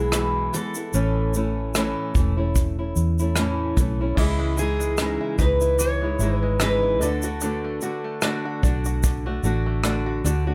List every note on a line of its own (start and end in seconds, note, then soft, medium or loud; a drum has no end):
0.00 0.49 B1 medium
0.00 0.13 E3 soft
0.00 0.14 G#3 soft
0.00 0.14 B3 soft
0.00 0.14 E4 soft
0.00 0.54 G#4 medium
0.12 0.54 E2 medium
0.12 0.54 B2 medium
0.12 0.54 E3 medium
0.12 0.54 G#3 medium
0.12 0.54 B3 medium
0.12 0.54 E4 medium
0.12 cross-stick medium
0.12 shaker medium
0.53 0.76 E3 medium
0.53 0.76 G#3 medium
0.53 0.75 B3 medium
0.53 0.75 E4 medium
0.53 3.74 A4 medium
0.53 cross-stick soft
0.53 shaker medium
0.75 0.93 E3 soft
0.75 0.94 G#3 soft
0.75 0.94 B3 soft
0.75 0.94 E4 soft
0.75 shaker soft
0.94 1.93 A1 medium
0.94 1.34 A2 medium
0.94 1.34 E3 medium
0.94 1.34 A3 medium
0.94 1.35 C#4 medium
0.94 1.35 E4 medium
0.94 shaker medium
1.34 1.75 E3 medium
1.34 1.75 A3 medium
1.34 1.76 C#4 medium
1.34 1.76 E4 medium
1.34 shaker soft
1.75 2.16 A2 medium
1.75 2.14 E3 medium
1.75 2.15 A3 medium
1.75 2.15 C#4 medium
1.75 2.16 E4 medium
1.75 cross-stick loud
1.75 shaker medium
2.15 2.92 E1 medium
2.15 2.38 E3 medium
2.15 2.38 A3 medium
2.15 2.37 C#4 medium
2.15 2.36 E4 medium
2.15 kick medium
2.15 shaker soft
2.37 2.79 A3 soft
2.37 2.78 C#4 soft
2.37 2.78 E4 medium
2.56 kick medium
2.56 shaker medium
2.79 3.20 A3 soft
2.79 3.19 C#4 soft
2.79 3.18 E4 soft
2.96 3.73 E2 medium
2.96 shaker soft
3.19 3.38 A3 soft
3.19 3.38 C#4 soft
3.19 3.37 E4 medium
3.19 shaker soft
3.36 3.78 A2 medium
3.36 3.77 E3 medium
3.36 3.78 A3 medium
3.36 3.78 C#4 medium
3.36 cross-stick medium
3.36 shaker medium
3.40 3.79 E4 medium
3.77 4.14 B1 medium
3.77 4.00 E3 medium
3.77 4.00 A3 medium
3.77 4.00 C#4 medium
3.77 4.00 E4 medium
3.77 kick medium
3.77 cross-stick soft
3.77 shaker soft
4.01 4.19 A3 soft
4.01 4.19 C#4 soft
4.01 4.18 E4 medium
4.15 5.17 C#2 medium
4.15 5.78 E3 medium
4.15 6.96 C#4 medium
4.15 6.97 E4 soft
4.15 4.55 E4 medium
4.15 6.97 G#4 medium
4.15 6.98 D#5 medium
4.15 kick medium
4.15 crash medium
4.19 4.59 C#3 medium
4.19 4.58 E3 medium
4.19 4.59 G#3 medium
4.19 4.60 E4 medium
4.39 4.78 G#3 medium
4.57 4.99 E3 medium
4.57 5.00 G#3 medium
4.57 5.00 D#4 medium
4.57 5.19 E4 medium
4.57 5.00 E4 medium
4.57 5.39 G#4 medium
4.57 shaker soft
4.80 6.00 G#3 soft
4.80 shaker soft
4.98 5.40 C#3 medium
4.98 5.39 E3 medium
4.98 5.40 G#3 medium
4.98 5.37 D#4 medium
4.98 5.40 D#4 medium
4.98 5.41 E4 medium
4.98 cross-stick loud
4.98 shaker medium
5.21 5.60 E4 medium
5.38 6.16 C#2 medium
5.38 6.02 E3 soft
5.38 6.03 G#3 medium
5.38 6.60 D#4 medium
5.38 6.03 D#4 medium
5.38 6.02 E4 medium
5.38 5.80 B4 medium
5.38 kick medium
5.38 shaker soft
5.61 6.19 E4 medium
5.61 shaker soft
5.79 7.01 E3 medium
5.79 6.36 C#5 medium
5.79 shaker medium
6.01 6.42 G#3 soft
6.01 6.21 G#3 soft
6.01 6.21 D#4 soft
6.01 6.21 E4 soft
6.19 7.00 G#1 medium
6.19 6.61 E3 medium
6.19 6.62 G#3 medium
6.19 6.62 D#4 medium
6.19 6.82 E4 medium
6.19 shaker soft
6.23 6.62 E4 medium
6.36 6.57 B4 medium
6.43 7.10 G#3 medium
6.60 7.02 C#3 medium
6.60 7.02 E3 medium
6.60 7.02 G#3 medium
6.60 7.10 D#4 medium
6.60 7.03 D#4 medium
6.60 7.02 E4 medium
6.60 6.99 B4 medium
6.60 cross-stick loud
6.60 shaker medium
6.83 7.10 E4 medium
6.99 7.78 D2 medium
6.99 7.41 D3 medium
6.99 7.24 D3 medium
6.99 10.20 A3 medium
6.99 10.20 D4 soft
6.99 10.21 F#4 soft
6.99 8.19 A4 medium
6.99 10.22 D5 medium
6.99 shaker soft
7.03 7.25 A3 medium
7.03 7.24 D4 medium
7.03 7.23 F#4 medium
7.22 7.43 D4 soft
7.22 7.81 F#4 medium
7.22 7.42 F#4 soft
7.22 shaker medium
7.27 7.42 A3 soft
7.41 9.02 D3 medium
7.41 7.82 D3 medium
7.41 7.83 A3 medium
7.41 7.83 D4 medium
7.41 7.83 F#4 medium
7.41 shaker medium
7.64 8.03 A3 medium
7.81 8.22 D3 medium
7.81 8.22 A3 medium
7.81 8.23 D4 medium
7.81 8.44 F#4 medium
7.81 8.23 F#4 medium
7.81 shaker soft
8.04 9.25 A3 soft
8.22 8.63 D3 medium
8.22 8.63 A3 medium
8.22 8.62 D4 medium
8.22 8.63 D4 medium
8.22 8.64 F#4 medium
8.22 cross-stick loud
8.22 shaker medium
8.45 8.85 F#4 medium
8.63 9.40 B1 medium
8.63 9.26 D3 medium
8.63 9.26 A3 medium
8.63 9.83 D4 medium
8.63 9.26 D4 medium
8.63 9.25 F#4 medium
8.63 kick medium
8.63 shaker soft
8.85 9.43 F#4 medium
8.85 shaker soft
9.03 10.54 D3 medium
9.03 kick medium
9.03 shaker medium
9.26 9.65 A3 medium
9.26 9.44 A3 soft
9.26 9.45 D4 soft
9.26 9.44 F#4 medium
9.43 10.21 A1 medium
9.43 9.83 D3 medium
9.43 9.83 A3 medium
9.43 9.84 D4 medium
9.43 10.05 F#4 medium
9.43 9.84 F#4 medium
9.43 shaker soft
9.66 10.54 A3 medium
9.84 10.23 D3 medium
9.84 10.25 A3 medium
9.84 10.24 D4 medium
9.84 10.25 D4 medium
9.84 10.25 F#4 medium
9.84 cross-stick loud
9.84 shaker medium
10.06 10.46 F#4 medium
10.24 10.54 D2 medium
10.24 10.47 D3 medium
10.24 10.48 A3 medium
10.24 10.54 D4 medium
10.24 10.47 D4 medium
10.24 10.46 F#4 medium
10.24 cross-stick soft
10.24 shaker medium
10.47 10.54 A3 soft
10.47 10.54 D4 soft
10.47 10.54 F#4 medium